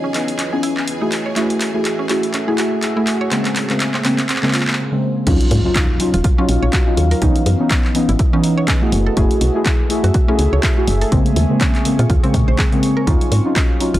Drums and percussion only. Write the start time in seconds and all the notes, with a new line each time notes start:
0.14 clap, open hi-hat
0.28 closed hi-hat
0.39 clap, closed hi-hat
0.63 open hi-hat
0.77 clap
0.88 closed hi-hat
1.12 clap, open hi-hat
1.36 clap, closed hi-hat
1.50 closed hi-hat
1.61 clap, open hi-hat
1.85 clap, closed hi-hat
2.09 clap, open hi-hat
2.23 closed hi-hat
2.34 clap, closed hi-hat
2.58 clap, open hi-hat
2.83 clap, closed hi-hat
3.07 clap, open hi-hat
3.32 clap, closed hi-hat
3.45 clap, closed hi-hat
3.56 clap, open hi-hat
3.70 clap, closed hi-hat
3.80 clap, closed hi-hat
3.94 clap
4.05 clap, open hi-hat
4.19 clap, closed hi-hat
4.29 clap, closed hi-hat
4.36 clap
4.43 clap
4.48 clap
4.54 clap, open hi-hat
4.60 clap
4.67 clap
4.73 clap
5.27 kick, closed hi-hat, crash
5.41 closed hi-hat
5.51 open hi-hat
5.75 kick, clap, closed hi-hat
6.00 open hi-hat
6.14 closed hi-hat
6.24 kick, closed hi-hat
6.49 open hi-hat
6.73 kick, clap, closed hi-hat
6.97 open hi-hat
7.11 open hi-hat
7.22 kick, closed hi-hat
7.36 closed hi-hat
7.46 open hi-hat
7.71 kick, clap, closed hi-hat
7.85 clap
7.95 open hi-hat
8.09 closed hi-hat
8.19 kick, closed hi-hat
8.44 open hi-hat
8.68 kick, clap, closed hi-hat
8.92 open hi-hat
9.17 kick, closed hi-hat
9.31 closed hi-hat
9.41 open hi-hat
9.66 kick, clap, closed hi-hat
9.90 open hi-hat
10.04 closed hi-hat
10.14 kick, closed hi-hat
10.39 open hi-hat
10.63 kick, clap, closed hi-hat
10.88 open hi-hat
11.01 open hi-hat
11.12 kick, closed hi-hat
11.26 closed hi-hat
11.36 open hi-hat
11.61 kick, clap, closed hi-hat
11.75 clap, closed hi-hat
11.85 open hi-hat
11.99 closed hi-hat
12.10 kick, closed hi-hat
12.24 closed hi-hat
12.34 kick, open hi-hat
12.58 kick, clap, open hi-hat
12.72 closed hi-hat
12.83 open hi-hat
13.07 kick, closed hi-hat
13.21 closed hi-hat
13.32 open hi-hat
13.56 kick, clap, closed hi-hat
13.80 open hi-hat
13.94 closed hi-hat